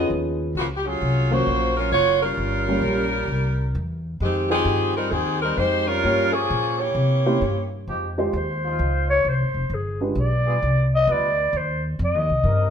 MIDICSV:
0, 0, Header, 1, 6, 480
1, 0, Start_track
1, 0, Key_signature, -4, "minor"
1, 0, Tempo, 457666
1, 573, Time_signature, 4, 2, 24, 8
1, 13321, End_track
2, 0, Start_track
2, 0, Title_t, "Clarinet"
2, 0, Program_c, 0, 71
2, 8773, Note_on_c, 0, 72, 76
2, 9507, Note_off_c, 0, 72, 0
2, 9543, Note_on_c, 0, 73, 93
2, 9735, Note_on_c, 0, 72, 79
2, 9751, Note_off_c, 0, 73, 0
2, 10218, Note_on_c, 0, 68, 62
2, 10234, Note_off_c, 0, 72, 0
2, 10511, Note_off_c, 0, 68, 0
2, 10693, Note_on_c, 0, 74, 78
2, 11426, Note_off_c, 0, 74, 0
2, 11482, Note_on_c, 0, 75, 102
2, 11662, Note_on_c, 0, 74, 87
2, 11677, Note_off_c, 0, 75, 0
2, 12134, Note_on_c, 0, 72, 73
2, 12150, Note_off_c, 0, 74, 0
2, 12428, Note_off_c, 0, 72, 0
2, 12632, Note_on_c, 0, 75, 75
2, 13321, Note_off_c, 0, 75, 0
2, 13321, End_track
3, 0, Start_track
3, 0, Title_t, "Upright piano"
3, 0, Program_c, 1, 0
3, 0, Note_on_c, 1, 53, 62
3, 0, Note_on_c, 1, 59, 61
3, 0, Note_on_c, 1, 61, 61
3, 0, Note_on_c, 1, 63, 59
3, 0, Note_on_c, 1, 68, 66
3, 543, Note_off_c, 1, 53, 0
3, 544, Note_off_c, 1, 61, 0
3, 546, Note_off_c, 1, 59, 0
3, 546, Note_off_c, 1, 63, 0
3, 547, Note_off_c, 1, 68, 0
3, 1372, Note_on_c, 1, 58, 52
3, 1374, Note_on_c, 1, 61, 52
3, 1378, Note_on_c, 1, 70, 64
3, 1379, Note_on_c, 1, 54, 56
3, 1380, Note_on_c, 1, 77, 50
3, 1983, Note_off_c, 1, 58, 0
3, 1984, Note_off_c, 1, 61, 0
3, 1986, Note_off_c, 1, 70, 0
3, 1987, Note_off_c, 1, 54, 0
3, 1987, Note_off_c, 1, 77, 0
3, 2814, Note_on_c, 1, 55, 61
3, 2814, Note_on_c, 1, 58, 54
3, 2815, Note_on_c, 1, 61, 61
3, 2816, Note_on_c, 1, 65, 55
3, 2818, Note_on_c, 1, 70, 69
3, 3424, Note_off_c, 1, 55, 0
3, 3424, Note_off_c, 1, 58, 0
3, 3425, Note_off_c, 1, 61, 0
3, 3426, Note_off_c, 1, 65, 0
3, 3427, Note_off_c, 1, 70, 0
3, 4721, Note_on_c, 1, 65, 58
3, 4721, Note_on_c, 1, 72, 61
3, 4722, Note_on_c, 1, 63, 56
3, 4724, Note_on_c, 1, 79, 52
3, 4725, Note_on_c, 1, 53, 59
3, 5338, Note_off_c, 1, 65, 0
3, 5338, Note_off_c, 1, 72, 0
3, 5339, Note_off_c, 1, 63, 0
3, 5340, Note_off_c, 1, 53, 0
3, 5340, Note_off_c, 1, 79, 0
3, 6329, Note_on_c, 1, 65, 55
3, 6332, Note_on_c, 1, 58, 57
3, 6335, Note_on_c, 1, 73, 68
3, 6336, Note_on_c, 1, 67, 54
3, 6338, Note_on_c, 1, 61, 58
3, 6616, Note_off_c, 1, 65, 0
3, 6618, Note_off_c, 1, 58, 0
3, 6619, Note_off_c, 1, 73, 0
3, 6620, Note_off_c, 1, 67, 0
3, 6621, Note_off_c, 1, 61, 0
3, 7616, Note_on_c, 1, 58, 72
3, 7616, Note_on_c, 1, 67, 64
3, 7619, Note_on_c, 1, 61, 62
3, 7619, Note_on_c, 1, 72, 71
3, 7621, Note_on_c, 1, 64, 61
3, 7761, Note_off_c, 1, 58, 0
3, 7762, Note_off_c, 1, 67, 0
3, 7763, Note_off_c, 1, 61, 0
3, 7763, Note_off_c, 1, 72, 0
3, 7764, Note_off_c, 1, 64, 0
3, 8577, Note_on_c, 1, 63, 59
3, 8579, Note_on_c, 1, 56, 60
3, 8581, Note_on_c, 1, 67, 58
3, 8584, Note_on_c, 1, 65, 59
3, 8586, Note_on_c, 1, 72, 70
3, 8722, Note_off_c, 1, 63, 0
3, 8723, Note_off_c, 1, 56, 0
3, 8724, Note_off_c, 1, 67, 0
3, 8726, Note_off_c, 1, 65, 0
3, 8727, Note_off_c, 1, 72, 0
3, 10493, Note_on_c, 1, 56, 49
3, 10498, Note_on_c, 1, 62, 48
3, 10498, Note_on_c, 1, 65, 47
3, 10498, Note_on_c, 1, 67, 46
3, 10500, Note_on_c, 1, 71, 55
3, 10639, Note_off_c, 1, 56, 0
3, 10641, Note_off_c, 1, 67, 0
3, 10642, Note_off_c, 1, 62, 0
3, 10642, Note_off_c, 1, 65, 0
3, 10643, Note_off_c, 1, 71, 0
3, 13321, End_track
4, 0, Start_track
4, 0, Title_t, "Saxophone section"
4, 0, Program_c, 2, 65
4, 0, Note_on_c, 2, 59, 83
4, 0, Note_on_c, 2, 65, 73
4, 0, Note_on_c, 2, 68, 84
4, 0, Note_on_c, 2, 75, 97
4, 110, Note_off_c, 2, 65, 0
4, 111, Note_off_c, 2, 59, 0
4, 113, Note_off_c, 2, 68, 0
4, 113, Note_off_c, 2, 75, 0
4, 600, Note_on_c, 2, 49, 68
4, 602, Note_on_c, 2, 66, 77
4, 606, Note_on_c, 2, 58, 71
4, 607, Note_on_c, 2, 53, 65
4, 693, Note_off_c, 2, 49, 0
4, 694, Note_off_c, 2, 66, 0
4, 697, Note_off_c, 2, 58, 0
4, 698, Note_off_c, 2, 53, 0
4, 803, Note_on_c, 2, 67, 63
4, 894, Note_off_c, 2, 67, 0
4, 904, Note_on_c, 2, 54, 74
4, 907, Note_on_c, 2, 65, 80
4, 908, Note_on_c, 2, 61, 76
4, 913, Note_on_c, 2, 68, 85
4, 1377, Note_off_c, 2, 54, 0
4, 1378, Note_off_c, 2, 65, 0
4, 1379, Note_off_c, 2, 61, 0
4, 1382, Note_off_c, 2, 68, 0
4, 1384, Note_on_c, 2, 72, 89
4, 1385, Note_on_c, 2, 58, 76
4, 1388, Note_on_c, 2, 66, 72
4, 1392, Note_on_c, 2, 65, 75
4, 1850, Note_off_c, 2, 65, 0
4, 1856, Note_on_c, 2, 54, 69
4, 1857, Note_off_c, 2, 72, 0
4, 1857, Note_on_c, 2, 70, 88
4, 1858, Note_off_c, 2, 58, 0
4, 1858, Note_on_c, 2, 61, 71
4, 1859, Note_off_c, 2, 66, 0
4, 1862, Note_on_c, 2, 65, 72
4, 2006, Note_off_c, 2, 54, 0
4, 2006, Note_off_c, 2, 65, 0
4, 2007, Note_off_c, 2, 61, 0
4, 2007, Note_off_c, 2, 70, 0
4, 2010, Note_on_c, 2, 58, 79
4, 2017, Note_on_c, 2, 66, 87
4, 2017, Note_on_c, 2, 73, 98
4, 2019, Note_on_c, 2, 65, 90
4, 2306, Note_off_c, 2, 58, 0
4, 2309, Note_off_c, 2, 66, 0
4, 2310, Note_off_c, 2, 73, 0
4, 2311, Note_off_c, 2, 65, 0
4, 2324, Note_on_c, 2, 61, 75
4, 2326, Note_on_c, 2, 55, 86
4, 2336, Note_on_c, 2, 70, 94
4, 2339, Note_on_c, 2, 65, 75
4, 3410, Note_off_c, 2, 61, 0
4, 3418, Note_off_c, 2, 65, 0
4, 4207, Note_off_c, 2, 55, 0
4, 4212, Note_off_c, 2, 70, 0
4, 4418, Note_on_c, 2, 56, 72
4, 4426, Note_on_c, 2, 51, 76
4, 4427, Note_on_c, 2, 67, 80
4, 4430, Note_on_c, 2, 60, 71
4, 4711, Note_off_c, 2, 56, 0
4, 4715, Note_off_c, 2, 51, 0
4, 4716, Note_off_c, 2, 67, 0
4, 4717, Note_off_c, 2, 60, 0
4, 4728, Note_on_c, 2, 51, 82
4, 4730, Note_on_c, 2, 60, 79
4, 4734, Note_on_c, 2, 67, 85
4, 4736, Note_on_c, 2, 68, 95
4, 5176, Note_off_c, 2, 51, 0
4, 5177, Note_off_c, 2, 60, 0
4, 5180, Note_off_c, 2, 67, 0
4, 5181, Note_off_c, 2, 68, 0
4, 5207, Note_on_c, 2, 63, 73
4, 5207, Note_on_c, 2, 70, 83
4, 5208, Note_on_c, 2, 55, 73
4, 5215, Note_on_c, 2, 60, 75
4, 5351, Note_off_c, 2, 60, 0
4, 5357, Note_on_c, 2, 51, 83
4, 5359, Note_on_c, 2, 68, 92
4, 5360, Note_off_c, 2, 63, 0
4, 5360, Note_off_c, 2, 70, 0
4, 5361, Note_off_c, 2, 55, 0
4, 5362, Note_on_c, 2, 67, 83
4, 5363, Note_on_c, 2, 60, 84
4, 5672, Note_off_c, 2, 60, 0
4, 5679, Note_on_c, 2, 55, 74
4, 5682, Note_on_c, 2, 63, 78
4, 5685, Note_on_c, 2, 60, 78
4, 5685, Note_on_c, 2, 70, 95
4, 5687, Note_off_c, 2, 51, 0
4, 5688, Note_off_c, 2, 68, 0
4, 5689, Note_off_c, 2, 67, 0
4, 5836, Note_off_c, 2, 55, 0
4, 5837, Note_off_c, 2, 63, 0
4, 5839, Note_off_c, 2, 60, 0
4, 5839, Note_off_c, 2, 70, 0
4, 5841, Note_on_c, 2, 67, 87
4, 5845, Note_on_c, 2, 56, 87
4, 5850, Note_on_c, 2, 72, 100
4, 5852, Note_on_c, 2, 63, 88
4, 6160, Note_on_c, 2, 65, 80
4, 6163, Note_on_c, 2, 61, 84
4, 6163, Note_on_c, 2, 70, 102
4, 6164, Note_on_c, 2, 55, 77
4, 6168, Note_off_c, 2, 67, 0
4, 6171, Note_off_c, 2, 56, 0
4, 6173, Note_off_c, 2, 72, 0
4, 6174, Note_off_c, 2, 63, 0
4, 6620, Note_off_c, 2, 61, 0
4, 6633, Note_on_c, 2, 61, 78
4, 6635, Note_on_c, 2, 53, 81
4, 6635, Note_on_c, 2, 68, 91
4, 6636, Note_on_c, 2, 58, 75
4, 6644, Note_off_c, 2, 65, 0
4, 6645, Note_off_c, 2, 55, 0
4, 6645, Note_off_c, 2, 70, 0
4, 7122, Note_off_c, 2, 61, 0
4, 7123, Note_off_c, 2, 53, 0
4, 7123, Note_off_c, 2, 68, 0
4, 7124, Note_off_c, 2, 58, 0
4, 7128, Note_on_c, 2, 73, 73
4, 7131, Note_on_c, 2, 67, 73
4, 7136, Note_on_c, 2, 52, 66
4, 7138, Note_on_c, 2, 58, 67
4, 8089, Note_off_c, 2, 73, 0
4, 8091, Note_off_c, 2, 67, 0
4, 8093, Note_off_c, 2, 52, 0
4, 8094, Note_off_c, 2, 58, 0
4, 13321, End_track
5, 0, Start_track
5, 0, Title_t, "Trombone section"
5, 0, Program_c, 3, 61
5, 8270, Note_on_c, 3, 63, 69
5, 8273, Note_on_c, 3, 53, 75
5, 8274, Note_on_c, 3, 56, 75
5, 8277, Note_on_c, 3, 67, 95
5, 8477, Note_off_c, 3, 63, 0
5, 8480, Note_off_c, 3, 53, 0
5, 8480, Note_off_c, 3, 56, 0
5, 8482, Note_off_c, 3, 67, 0
5, 9071, Note_on_c, 3, 53, 85
5, 9071, Note_on_c, 3, 65, 99
5, 9074, Note_on_c, 3, 56, 77
5, 9074, Note_on_c, 3, 63, 74
5, 9672, Note_off_c, 3, 53, 0
5, 9672, Note_off_c, 3, 65, 0
5, 9673, Note_off_c, 3, 63, 0
5, 9674, Note_off_c, 3, 56, 0
5, 10973, Note_on_c, 3, 59, 75
5, 10973, Note_on_c, 3, 65, 78
5, 10973, Note_on_c, 3, 68, 96
5, 10976, Note_on_c, 3, 55, 88
5, 11082, Note_off_c, 3, 59, 0
5, 11083, Note_off_c, 3, 65, 0
5, 11083, Note_off_c, 3, 68, 0
5, 11084, Note_off_c, 3, 55, 0
5, 11620, Note_on_c, 3, 55, 81
5, 11621, Note_on_c, 3, 71, 92
5, 11623, Note_on_c, 3, 59, 71
5, 11623, Note_on_c, 3, 65, 78
5, 11830, Note_off_c, 3, 55, 0
5, 11831, Note_off_c, 3, 71, 0
5, 11832, Note_off_c, 3, 59, 0
5, 11832, Note_off_c, 3, 65, 0
5, 13056, Note_on_c, 3, 60, 81
5, 13056, Note_on_c, 3, 63, 78
5, 13057, Note_on_c, 3, 70, 89
5, 13063, Note_on_c, 3, 55, 88
5, 13321, Note_off_c, 3, 55, 0
5, 13321, Note_off_c, 3, 60, 0
5, 13321, Note_off_c, 3, 63, 0
5, 13321, Note_off_c, 3, 70, 0
5, 13321, End_track
6, 0, Start_track
6, 0, Title_t, "Upright bass"
6, 0, Program_c, 4, 32
6, 105, Note_on_c, 4, 39, 72
6, 565, Note_off_c, 4, 39, 0
6, 577, Note_on_c, 4, 37, 68
6, 1041, Note_off_c, 4, 37, 0
6, 1061, Note_on_c, 4, 36, 77
6, 1524, Note_off_c, 4, 36, 0
6, 1540, Note_on_c, 4, 34, 81
6, 2003, Note_off_c, 4, 34, 0
6, 2010, Note_on_c, 4, 30, 77
6, 2478, Note_off_c, 4, 30, 0
6, 2490, Note_on_c, 4, 31, 71
6, 2948, Note_off_c, 4, 31, 0
6, 2954, Note_on_c, 4, 34, 80
6, 3431, Note_off_c, 4, 34, 0
6, 3440, Note_on_c, 4, 36, 80
6, 3914, Note_off_c, 4, 36, 0
6, 3931, Note_on_c, 4, 40, 86
6, 4399, Note_off_c, 4, 40, 0
6, 4409, Note_on_c, 4, 41, 80
6, 4871, Note_off_c, 4, 41, 0
6, 4877, Note_on_c, 4, 43, 91
6, 5352, Note_off_c, 4, 43, 0
6, 5365, Note_on_c, 4, 39, 79
6, 5836, Note_off_c, 4, 39, 0
6, 5846, Note_on_c, 4, 41, 76
6, 6316, Note_off_c, 4, 41, 0
6, 6339, Note_on_c, 4, 43, 73
6, 6803, Note_off_c, 4, 43, 0
6, 6822, Note_on_c, 4, 46, 92
6, 7280, Note_off_c, 4, 46, 0
6, 7287, Note_on_c, 4, 48, 81
6, 7757, Note_off_c, 4, 48, 0
6, 7776, Note_on_c, 4, 43, 80
6, 8241, Note_off_c, 4, 43, 0
6, 8260, Note_on_c, 4, 41, 76
6, 8723, Note_off_c, 4, 41, 0
6, 8740, Note_on_c, 4, 39, 84
6, 9203, Note_off_c, 4, 39, 0
6, 9220, Note_on_c, 4, 37, 86
6, 9683, Note_off_c, 4, 37, 0
6, 9699, Note_on_c, 4, 36, 77
6, 9864, Note_on_c, 4, 32, 51
6, 9880, Note_off_c, 4, 36, 0
6, 10001, Note_off_c, 4, 32, 0
6, 10007, Note_on_c, 4, 29, 62
6, 10159, Note_off_c, 4, 29, 0
6, 10170, Note_on_c, 4, 31, 79
6, 10637, Note_off_c, 4, 31, 0
6, 10649, Note_on_c, 4, 35, 86
6, 11117, Note_off_c, 4, 35, 0
6, 11143, Note_on_c, 4, 36, 81
6, 11603, Note_off_c, 4, 36, 0
6, 11614, Note_on_c, 4, 38, 87
6, 12078, Note_off_c, 4, 38, 0
6, 12091, Note_on_c, 4, 39, 85
6, 12557, Note_off_c, 4, 39, 0
6, 12576, Note_on_c, 4, 41, 89
6, 12741, Note_off_c, 4, 41, 0
6, 12741, Note_on_c, 4, 39, 59
6, 12889, Note_off_c, 4, 39, 0
6, 12896, Note_on_c, 4, 36, 63
6, 13037, Note_off_c, 4, 36, 0
6, 13043, Note_on_c, 4, 43, 88
6, 13321, Note_off_c, 4, 43, 0
6, 13321, End_track
0, 0, End_of_file